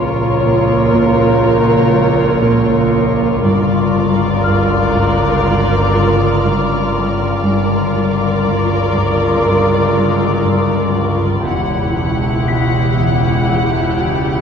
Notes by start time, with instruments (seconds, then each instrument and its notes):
Already playing: double bass section A#1, synth drone C#2, cello section A#2, viola section F4, violin section A#4 C#5, celesta C#6
0.45 cello section A#2
0.95 cello section A#2
1.45 cello section A#2
1.95 cello section A#3
2.44 cello section A#2
2.95 cello section A#3
3.44 double bass section G1, synth drone C#2, cello section G2, viola section F4, violin section A#4 D5 A#5 F6
3.96 cello section G2
4.44 cello section G2, celesta F6
4.49 violin section D6
4.96 cello section G2
5.46 cello section G2
5.96 cello section G3
6.46 cello section G2
6.98 cello section G3
7.45 double bass section G1, synth drone C#2, cello section G2, viola section F4, violin section A#4 D5
7.95 cello section G2
8.47 cello section G2
8.96 cello section G2
9.46 cello section G2
9.96 cello section G3
10.45 cello section G2
10.97 cello section G3
11.46 double bass section E1, synth drone C#2, cello section E2, viola section E4, violin section G4 F#5
11.97 cello section E2
12.48 cello section E2, celesta B6
12.98 cello section E2
13.49 cello section E2
13.99 cello section E3